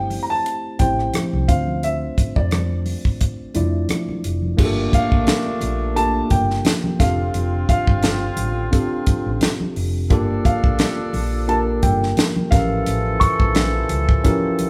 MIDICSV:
0, 0, Header, 1, 7, 480
1, 0, Start_track
1, 0, Tempo, 689655
1, 1276, Time_signature, 4, 2, 24, 8
1, 10231, End_track
2, 0, Start_track
2, 0, Title_t, "Grand piano"
2, 0, Program_c, 0, 0
2, 0, Note_on_c, 0, 79, 92
2, 157, Note_on_c, 0, 82, 72
2, 163, Note_off_c, 0, 79, 0
2, 208, Note_off_c, 0, 82, 0
2, 210, Note_on_c, 0, 81, 102
2, 552, Note_on_c, 0, 79, 91
2, 569, Note_off_c, 0, 81, 0
2, 1032, Note_on_c, 0, 77, 87
2, 1048, Note_off_c, 0, 79, 0
2, 1279, Note_on_c, 0, 76, 92
2, 1281, Note_off_c, 0, 77, 0
2, 1644, Note_on_c, 0, 74, 83
2, 1658, Note_off_c, 0, 76, 0
2, 2926, Note_off_c, 0, 74, 0
2, 3441, Note_on_c, 0, 77, 97
2, 4150, Note_on_c, 0, 81, 99
2, 4179, Note_off_c, 0, 77, 0
2, 4375, Note_off_c, 0, 81, 0
2, 4392, Note_on_c, 0, 79, 88
2, 4871, Note_on_c, 0, 77, 91
2, 4887, Note_off_c, 0, 79, 0
2, 5344, Note_off_c, 0, 77, 0
2, 5355, Note_on_c, 0, 77, 99
2, 6286, Note_off_c, 0, 77, 0
2, 7277, Note_on_c, 0, 77, 92
2, 7967, Note_off_c, 0, 77, 0
2, 7996, Note_on_c, 0, 81, 84
2, 8050, Note_off_c, 0, 81, 0
2, 8231, Note_on_c, 0, 79, 81
2, 8705, Note_on_c, 0, 77, 95
2, 8727, Note_off_c, 0, 79, 0
2, 9187, Note_on_c, 0, 85, 98
2, 9204, Note_off_c, 0, 77, 0
2, 10122, Note_off_c, 0, 85, 0
2, 10231, End_track
3, 0, Start_track
3, 0, Title_t, "Tine electric piano"
3, 0, Program_c, 1, 4
3, 0, Control_c, 1, 64, 127
3, 0, Note_on_c, 1, 57, 68
3, 0, Note_on_c, 1, 60, 69
3, 0, Note_on_c, 1, 64, 63
3, 0, Note_on_c, 1, 67, 69
3, 0, Note_on_c, 1, 72, 80
3, 84, Note_off_c, 1, 57, 0
3, 86, Note_off_c, 1, 60, 0
3, 88, Note_off_c, 1, 64, 0
3, 89, Note_off_c, 1, 67, 0
3, 91, Note_off_c, 1, 72, 0
3, 553, Note_on_c, 1, 57, 63
3, 556, Note_on_c, 1, 60, 58
3, 560, Note_on_c, 1, 64, 59
3, 564, Note_on_c, 1, 67, 57
3, 567, Note_on_c, 1, 72, 74
3, 1019, Note_off_c, 1, 57, 0
3, 1028, Note_off_c, 1, 60, 0
3, 1028, Note_on_c, 1, 57, 68
3, 1032, Note_on_c, 1, 62, 63
3, 1035, Note_off_c, 1, 72, 0
3, 1036, Note_on_c, 1, 60, 63
3, 1038, Note_off_c, 1, 64, 0
3, 1038, Note_on_c, 1, 65, 63
3, 1040, Note_off_c, 1, 67, 0
3, 1043, Note_on_c, 1, 72, 72
3, 1044, Control_c, 1, 64, 0
3, 1149, Control_c, 1, 64, 127
3, 1803, Note_off_c, 1, 57, 0
3, 1805, Note_off_c, 1, 62, 0
3, 1807, Note_off_c, 1, 60, 0
3, 1808, Note_off_c, 1, 65, 0
3, 1811, Note_off_c, 1, 72, 0
3, 2467, Note_on_c, 1, 57, 74
3, 2471, Note_on_c, 1, 62, 70
3, 2475, Note_on_c, 1, 64, 73
3, 2476, Note_on_c, 1, 65, 67
3, 2481, Note_on_c, 1, 74, 79
3, 3022, Note_off_c, 1, 57, 0
3, 3024, Note_off_c, 1, 62, 0
3, 3026, Note_off_c, 1, 64, 0
3, 3027, Note_off_c, 1, 65, 0
3, 3030, Note_off_c, 1, 74, 0
3, 3182, Note_on_c, 1, 58, 85
3, 3186, Note_on_c, 1, 62, 75
3, 3191, Note_on_c, 1, 65, 78
3, 3194, Note_on_c, 1, 67, 78
3, 3196, Note_on_c, 1, 68, 75
3, 3204, Control_c, 1, 64, 0
3, 3241, Note_on_c, 1, 69, 101
3, 3244, Note_off_c, 1, 68, 0
3, 3338, Control_c, 1, 64, 127
3, 3917, Note_off_c, 1, 58, 0
3, 3919, Note_off_c, 1, 62, 0
3, 3921, Note_off_c, 1, 65, 0
3, 3923, Note_off_c, 1, 67, 0
3, 3947, Note_off_c, 1, 69, 0
3, 4142, Note_on_c, 1, 58, 72
3, 4146, Note_on_c, 1, 62, 65
3, 4150, Note_on_c, 1, 65, 61
3, 4152, Note_on_c, 1, 67, 63
3, 4158, Note_on_c, 1, 69, 72
3, 4861, Note_off_c, 1, 62, 0
3, 4864, Note_off_c, 1, 65, 0
3, 4865, Note_on_c, 1, 60, 70
3, 4868, Note_off_c, 1, 58, 0
3, 4868, Note_off_c, 1, 67, 0
3, 4869, Note_off_c, 1, 69, 0
3, 4869, Note_on_c, 1, 62, 62
3, 4872, Note_on_c, 1, 65, 68
3, 4876, Note_on_c, 1, 67, 70
3, 4878, Note_on_c, 1, 69, 82
3, 4883, Control_c, 1, 64, 0
3, 4989, Control_c, 1, 64, 127
3, 5641, Note_off_c, 1, 60, 0
3, 5643, Note_off_c, 1, 62, 0
3, 5645, Note_off_c, 1, 65, 0
3, 5647, Note_off_c, 1, 67, 0
3, 5648, Note_off_c, 1, 69, 0
3, 6066, Note_on_c, 1, 60, 83
3, 6068, Note_on_c, 1, 62, 77
3, 6072, Note_on_c, 1, 65, 73
3, 6076, Note_on_c, 1, 67, 74
3, 6078, Note_on_c, 1, 69, 95
3, 6799, Note_off_c, 1, 60, 0
3, 6800, Note_off_c, 1, 62, 0
3, 6802, Note_off_c, 1, 65, 0
3, 6804, Note_off_c, 1, 67, 0
3, 6805, Note_off_c, 1, 69, 0
3, 7030, Note_on_c, 1, 58, 90
3, 7032, Note_on_c, 1, 62, 82
3, 7036, Note_on_c, 1, 65, 84
3, 7041, Note_on_c, 1, 67, 81
3, 7044, Control_c, 1, 64, 0
3, 7046, Note_on_c, 1, 69, 101
3, 7158, Control_c, 1, 64, 127
3, 7761, Note_off_c, 1, 58, 0
3, 7762, Note_off_c, 1, 62, 0
3, 7764, Note_off_c, 1, 65, 0
3, 7767, Note_off_c, 1, 67, 0
3, 7769, Note_off_c, 1, 69, 0
3, 7988, Note_on_c, 1, 58, 72
3, 7990, Note_on_c, 1, 62, 66
3, 7996, Note_on_c, 1, 65, 66
3, 7999, Note_on_c, 1, 67, 63
3, 8002, Note_on_c, 1, 70, 75
3, 8707, Note_off_c, 1, 67, 0
3, 8708, Note_on_c, 1, 61, 72
3, 8711, Note_off_c, 1, 58, 0
3, 8712, Note_off_c, 1, 62, 0
3, 8714, Note_off_c, 1, 70, 0
3, 8714, Note_on_c, 1, 53, 68
3, 8715, Note_off_c, 1, 65, 0
3, 8716, Note_on_c, 1, 67, 65
3, 8722, Control_c, 1, 64, 0
3, 8722, Note_on_c, 1, 70, 78
3, 8839, Control_c, 1, 64, 127
3, 9482, Note_off_c, 1, 61, 0
3, 9485, Note_off_c, 1, 53, 0
3, 9486, Note_off_c, 1, 67, 0
3, 9490, Note_off_c, 1, 70, 0
3, 9907, Note_on_c, 1, 61, 86
3, 9910, Note_on_c, 1, 64, 73
3, 9913, Note_on_c, 1, 53, 73
3, 9917, Note_on_c, 1, 67, 76
3, 9922, Note_on_c, 1, 70, 91
3, 10231, Note_off_c, 1, 53, 0
3, 10231, Note_off_c, 1, 61, 0
3, 10231, Note_off_c, 1, 64, 0
3, 10231, Note_off_c, 1, 67, 0
3, 10231, Note_off_c, 1, 70, 0
3, 10231, End_track
4, 0, Start_track
4, 0, Title_t, "Horn section"
4, 0, Program_c, 2, 61
4, 3191, Note_on_c, 2, 57, 70
4, 3192, Note_on_c, 2, 46, 68
4, 3192, Note_on_c, 2, 62, 78
4, 4605, Note_off_c, 2, 46, 0
4, 4605, Note_off_c, 2, 57, 0
4, 4605, Note_off_c, 2, 62, 0
4, 4872, Note_on_c, 2, 60, 69
4, 4872, Note_on_c, 2, 65, 78
4, 4873, Note_on_c, 2, 50, 65
4, 6765, Note_off_c, 2, 60, 0
4, 6765, Note_off_c, 2, 65, 0
4, 6766, Note_off_c, 2, 50, 0
4, 7034, Note_on_c, 2, 69, 76
4, 7036, Note_on_c, 2, 53, 67
4, 7037, Note_on_c, 2, 62, 67
4, 8446, Note_off_c, 2, 69, 0
4, 8447, Note_off_c, 2, 53, 0
4, 8447, Note_off_c, 2, 62, 0
4, 8713, Note_on_c, 2, 52, 66
4, 8713, Note_on_c, 2, 69, 82
4, 8714, Note_on_c, 2, 53, 71
4, 10231, Note_off_c, 2, 52, 0
4, 10231, Note_off_c, 2, 53, 0
4, 10231, Note_off_c, 2, 69, 0
4, 10231, End_track
5, 0, Start_track
5, 0, Title_t, "Fingered electric bass"
5, 0, Program_c, 3, 33
5, 0, Note_on_c, 3, 31, 77
5, 120, Note_off_c, 3, 31, 0
5, 556, Note_on_c, 3, 33, 82
5, 752, Note_off_c, 3, 33, 0
5, 927, Note_on_c, 3, 36, 80
5, 1017, Note_off_c, 3, 36, 0
5, 1037, Note_on_c, 3, 38, 91
5, 1428, Note_off_c, 3, 38, 0
5, 1646, Note_on_c, 3, 41, 76
5, 2037, Note_off_c, 3, 41, 0
5, 2474, Note_on_c, 3, 41, 81
5, 2670, Note_off_c, 3, 41, 0
5, 2958, Note_on_c, 3, 29, 85
5, 3152, Note_off_c, 3, 29, 0
5, 3194, Note_on_c, 3, 31, 101
5, 3390, Note_off_c, 3, 31, 0
5, 3563, Note_on_c, 3, 34, 91
5, 3654, Note_off_c, 3, 34, 0
5, 3915, Note_on_c, 3, 34, 81
5, 4306, Note_off_c, 3, 34, 0
5, 4393, Note_on_c, 3, 31, 83
5, 4589, Note_off_c, 3, 31, 0
5, 4873, Note_on_c, 3, 29, 91
5, 5069, Note_off_c, 3, 29, 0
5, 5112, Note_on_c, 3, 29, 101
5, 5309, Note_off_c, 3, 29, 0
5, 5481, Note_on_c, 3, 31, 88
5, 5768, Note_off_c, 3, 31, 0
5, 5835, Note_on_c, 3, 33, 83
5, 6030, Note_off_c, 3, 33, 0
5, 6447, Note_on_c, 3, 33, 76
5, 6536, Note_off_c, 3, 33, 0
5, 6798, Note_on_c, 3, 29, 88
5, 7035, Note_off_c, 3, 29, 0
5, 7035, Note_on_c, 3, 31, 113
5, 7230, Note_off_c, 3, 31, 0
5, 7404, Note_on_c, 3, 34, 86
5, 7494, Note_off_c, 3, 34, 0
5, 7755, Note_on_c, 3, 34, 78
5, 8237, Note_on_c, 3, 31, 89
5, 8247, Note_off_c, 3, 34, 0
5, 8431, Note_off_c, 3, 31, 0
5, 8716, Note_on_c, 3, 33, 101
5, 8910, Note_off_c, 3, 33, 0
5, 8959, Note_on_c, 3, 33, 99
5, 9152, Note_off_c, 3, 33, 0
5, 9327, Note_on_c, 3, 34, 88
5, 9611, Note_off_c, 3, 34, 0
5, 9677, Note_on_c, 3, 37, 87
5, 9871, Note_off_c, 3, 37, 0
5, 10231, End_track
6, 0, Start_track
6, 0, Title_t, "Muted fingered electric bass strokes"
6, 6315, Note_on_c, 9, 29, 46
6, 6385, Note_off_c, 9, 29, 0
6, 10157, Note_on_c, 9, 29, 44
6, 10227, Note_off_c, 9, 29, 0
6, 10231, End_track
7, 0, Start_track
7, 0, Title_t, "Drums"
7, 72, Note_on_c, 9, 62, 45
7, 74, Note_on_c, 9, 46, 51
7, 142, Note_off_c, 9, 62, 0
7, 144, Note_off_c, 9, 46, 0
7, 321, Note_on_c, 9, 42, 71
7, 390, Note_off_c, 9, 42, 0
7, 552, Note_on_c, 9, 42, 64
7, 555, Note_on_c, 9, 36, 79
7, 566, Note_on_c, 9, 62, 43
7, 566, Note_on_c, 9, 64, 60
7, 621, Note_off_c, 9, 42, 0
7, 625, Note_off_c, 9, 36, 0
7, 635, Note_off_c, 9, 62, 0
7, 635, Note_off_c, 9, 64, 0
7, 691, Note_on_c, 9, 37, 31
7, 761, Note_off_c, 9, 37, 0
7, 791, Note_on_c, 9, 42, 72
7, 794, Note_on_c, 9, 63, 67
7, 802, Note_on_c, 9, 37, 111
7, 860, Note_off_c, 9, 42, 0
7, 864, Note_off_c, 9, 63, 0
7, 872, Note_off_c, 9, 37, 0
7, 928, Note_on_c, 9, 63, 59
7, 997, Note_off_c, 9, 63, 0
7, 1035, Note_on_c, 9, 36, 96
7, 1037, Note_on_c, 9, 42, 76
7, 1104, Note_off_c, 9, 36, 0
7, 1106, Note_off_c, 9, 42, 0
7, 1163, Note_on_c, 9, 63, 46
7, 1232, Note_off_c, 9, 63, 0
7, 1276, Note_on_c, 9, 42, 69
7, 1345, Note_off_c, 9, 42, 0
7, 1513, Note_on_c, 9, 62, 40
7, 1516, Note_on_c, 9, 36, 89
7, 1520, Note_on_c, 9, 42, 72
7, 1583, Note_off_c, 9, 62, 0
7, 1585, Note_off_c, 9, 36, 0
7, 1590, Note_off_c, 9, 42, 0
7, 1644, Note_on_c, 9, 36, 77
7, 1714, Note_off_c, 9, 36, 0
7, 1749, Note_on_c, 9, 42, 63
7, 1757, Note_on_c, 9, 37, 96
7, 1758, Note_on_c, 9, 63, 74
7, 1818, Note_off_c, 9, 42, 0
7, 1826, Note_off_c, 9, 37, 0
7, 1827, Note_off_c, 9, 63, 0
7, 1988, Note_on_c, 9, 62, 44
7, 1989, Note_on_c, 9, 46, 51
7, 2058, Note_off_c, 9, 46, 0
7, 2058, Note_off_c, 9, 62, 0
7, 2123, Note_on_c, 9, 36, 80
7, 2193, Note_off_c, 9, 36, 0
7, 2232, Note_on_c, 9, 42, 71
7, 2236, Note_on_c, 9, 36, 77
7, 2302, Note_off_c, 9, 42, 0
7, 2305, Note_off_c, 9, 36, 0
7, 2468, Note_on_c, 9, 42, 67
7, 2483, Note_on_c, 9, 62, 44
7, 2483, Note_on_c, 9, 64, 62
7, 2538, Note_off_c, 9, 42, 0
7, 2553, Note_off_c, 9, 62, 0
7, 2553, Note_off_c, 9, 64, 0
7, 2707, Note_on_c, 9, 42, 72
7, 2710, Note_on_c, 9, 63, 68
7, 2718, Note_on_c, 9, 37, 101
7, 2776, Note_off_c, 9, 42, 0
7, 2779, Note_off_c, 9, 63, 0
7, 2788, Note_off_c, 9, 37, 0
7, 2843, Note_on_c, 9, 63, 57
7, 2913, Note_off_c, 9, 63, 0
7, 2952, Note_on_c, 9, 42, 78
7, 3022, Note_off_c, 9, 42, 0
7, 3078, Note_on_c, 9, 63, 43
7, 3148, Note_off_c, 9, 63, 0
7, 3188, Note_on_c, 9, 62, 28
7, 3192, Note_on_c, 9, 36, 107
7, 3192, Note_on_c, 9, 49, 86
7, 3258, Note_off_c, 9, 62, 0
7, 3261, Note_off_c, 9, 36, 0
7, 3262, Note_off_c, 9, 49, 0
7, 3425, Note_on_c, 9, 62, 42
7, 3433, Note_on_c, 9, 36, 88
7, 3437, Note_on_c, 9, 42, 73
7, 3494, Note_off_c, 9, 62, 0
7, 3502, Note_off_c, 9, 36, 0
7, 3506, Note_off_c, 9, 42, 0
7, 3562, Note_on_c, 9, 36, 83
7, 3632, Note_off_c, 9, 36, 0
7, 3667, Note_on_c, 9, 42, 68
7, 3670, Note_on_c, 9, 63, 76
7, 3675, Note_on_c, 9, 38, 108
7, 3736, Note_off_c, 9, 42, 0
7, 3740, Note_off_c, 9, 63, 0
7, 3744, Note_off_c, 9, 38, 0
7, 3902, Note_on_c, 9, 62, 46
7, 3907, Note_on_c, 9, 42, 72
7, 3972, Note_off_c, 9, 62, 0
7, 3977, Note_off_c, 9, 42, 0
7, 4153, Note_on_c, 9, 42, 70
7, 4223, Note_off_c, 9, 42, 0
7, 4387, Note_on_c, 9, 42, 70
7, 4391, Note_on_c, 9, 36, 83
7, 4400, Note_on_c, 9, 62, 42
7, 4400, Note_on_c, 9, 64, 64
7, 4457, Note_off_c, 9, 42, 0
7, 4460, Note_off_c, 9, 36, 0
7, 4469, Note_off_c, 9, 62, 0
7, 4469, Note_off_c, 9, 64, 0
7, 4528, Note_on_c, 9, 38, 32
7, 4597, Note_off_c, 9, 38, 0
7, 4627, Note_on_c, 9, 42, 74
7, 4628, Note_on_c, 9, 63, 75
7, 4639, Note_on_c, 9, 38, 116
7, 4697, Note_off_c, 9, 42, 0
7, 4697, Note_off_c, 9, 63, 0
7, 4708, Note_off_c, 9, 38, 0
7, 4760, Note_on_c, 9, 63, 63
7, 4830, Note_off_c, 9, 63, 0
7, 4871, Note_on_c, 9, 36, 98
7, 4874, Note_on_c, 9, 42, 77
7, 4877, Note_on_c, 9, 38, 36
7, 4941, Note_off_c, 9, 36, 0
7, 4944, Note_off_c, 9, 42, 0
7, 4947, Note_off_c, 9, 38, 0
7, 5110, Note_on_c, 9, 42, 66
7, 5111, Note_on_c, 9, 62, 28
7, 5179, Note_off_c, 9, 42, 0
7, 5181, Note_off_c, 9, 62, 0
7, 5348, Note_on_c, 9, 62, 39
7, 5352, Note_on_c, 9, 36, 93
7, 5355, Note_on_c, 9, 42, 73
7, 5417, Note_off_c, 9, 62, 0
7, 5421, Note_off_c, 9, 36, 0
7, 5424, Note_off_c, 9, 42, 0
7, 5481, Note_on_c, 9, 36, 89
7, 5550, Note_off_c, 9, 36, 0
7, 5586, Note_on_c, 9, 42, 70
7, 5593, Note_on_c, 9, 63, 73
7, 5594, Note_on_c, 9, 38, 101
7, 5656, Note_off_c, 9, 42, 0
7, 5663, Note_off_c, 9, 63, 0
7, 5664, Note_off_c, 9, 38, 0
7, 5823, Note_on_c, 9, 62, 46
7, 5824, Note_on_c, 9, 42, 69
7, 5892, Note_off_c, 9, 62, 0
7, 5894, Note_off_c, 9, 42, 0
7, 6074, Note_on_c, 9, 42, 68
7, 6076, Note_on_c, 9, 36, 86
7, 6144, Note_off_c, 9, 42, 0
7, 6145, Note_off_c, 9, 36, 0
7, 6309, Note_on_c, 9, 42, 68
7, 6313, Note_on_c, 9, 36, 84
7, 6321, Note_on_c, 9, 62, 47
7, 6379, Note_off_c, 9, 42, 0
7, 6382, Note_off_c, 9, 36, 0
7, 6391, Note_off_c, 9, 62, 0
7, 6549, Note_on_c, 9, 42, 76
7, 6553, Note_on_c, 9, 63, 68
7, 6561, Note_on_c, 9, 38, 109
7, 6619, Note_off_c, 9, 42, 0
7, 6622, Note_off_c, 9, 63, 0
7, 6631, Note_off_c, 9, 38, 0
7, 6685, Note_on_c, 9, 63, 57
7, 6754, Note_off_c, 9, 63, 0
7, 6795, Note_on_c, 9, 46, 54
7, 6865, Note_off_c, 9, 46, 0
7, 7032, Note_on_c, 9, 42, 69
7, 7033, Note_on_c, 9, 36, 104
7, 7102, Note_off_c, 9, 42, 0
7, 7103, Note_off_c, 9, 36, 0
7, 7271, Note_on_c, 9, 62, 38
7, 7274, Note_on_c, 9, 36, 90
7, 7277, Note_on_c, 9, 42, 71
7, 7341, Note_off_c, 9, 62, 0
7, 7344, Note_off_c, 9, 36, 0
7, 7347, Note_off_c, 9, 42, 0
7, 7404, Note_on_c, 9, 36, 85
7, 7473, Note_off_c, 9, 36, 0
7, 7508, Note_on_c, 9, 42, 70
7, 7514, Note_on_c, 9, 63, 78
7, 7516, Note_on_c, 9, 38, 102
7, 7577, Note_off_c, 9, 42, 0
7, 7584, Note_off_c, 9, 63, 0
7, 7585, Note_off_c, 9, 38, 0
7, 7747, Note_on_c, 9, 62, 46
7, 7752, Note_on_c, 9, 46, 50
7, 7817, Note_off_c, 9, 62, 0
7, 7821, Note_off_c, 9, 46, 0
7, 7997, Note_on_c, 9, 42, 71
7, 8066, Note_off_c, 9, 42, 0
7, 8231, Note_on_c, 9, 42, 67
7, 8234, Note_on_c, 9, 36, 84
7, 8242, Note_on_c, 9, 62, 46
7, 8242, Note_on_c, 9, 64, 59
7, 8301, Note_off_c, 9, 42, 0
7, 8303, Note_off_c, 9, 36, 0
7, 8312, Note_off_c, 9, 62, 0
7, 8312, Note_off_c, 9, 64, 0
7, 8373, Note_on_c, 9, 38, 33
7, 8443, Note_off_c, 9, 38, 0
7, 8471, Note_on_c, 9, 42, 72
7, 8472, Note_on_c, 9, 63, 72
7, 8483, Note_on_c, 9, 38, 118
7, 8541, Note_off_c, 9, 42, 0
7, 8542, Note_off_c, 9, 63, 0
7, 8553, Note_off_c, 9, 38, 0
7, 8605, Note_on_c, 9, 63, 64
7, 8674, Note_off_c, 9, 63, 0
7, 8714, Note_on_c, 9, 36, 108
7, 8717, Note_on_c, 9, 42, 79
7, 8720, Note_on_c, 9, 38, 36
7, 8783, Note_off_c, 9, 36, 0
7, 8786, Note_off_c, 9, 42, 0
7, 8790, Note_off_c, 9, 38, 0
7, 8954, Note_on_c, 9, 42, 69
7, 9023, Note_off_c, 9, 42, 0
7, 9192, Note_on_c, 9, 62, 41
7, 9195, Note_on_c, 9, 36, 88
7, 9198, Note_on_c, 9, 42, 73
7, 9261, Note_off_c, 9, 62, 0
7, 9264, Note_off_c, 9, 36, 0
7, 9268, Note_off_c, 9, 42, 0
7, 9324, Note_on_c, 9, 36, 85
7, 9394, Note_off_c, 9, 36, 0
7, 9429, Note_on_c, 9, 42, 73
7, 9437, Note_on_c, 9, 38, 105
7, 9437, Note_on_c, 9, 63, 84
7, 9499, Note_off_c, 9, 42, 0
7, 9507, Note_off_c, 9, 38, 0
7, 9507, Note_off_c, 9, 63, 0
7, 9669, Note_on_c, 9, 62, 48
7, 9670, Note_on_c, 9, 42, 70
7, 9739, Note_off_c, 9, 42, 0
7, 9739, Note_off_c, 9, 62, 0
7, 9805, Note_on_c, 9, 36, 95
7, 9874, Note_off_c, 9, 36, 0
7, 9915, Note_on_c, 9, 42, 78
7, 9917, Note_on_c, 9, 36, 82
7, 9984, Note_off_c, 9, 42, 0
7, 9987, Note_off_c, 9, 36, 0
7, 10152, Note_on_c, 9, 42, 66
7, 10162, Note_on_c, 9, 62, 46
7, 10222, Note_off_c, 9, 42, 0
7, 10231, Note_off_c, 9, 62, 0
7, 10231, End_track
0, 0, End_of_file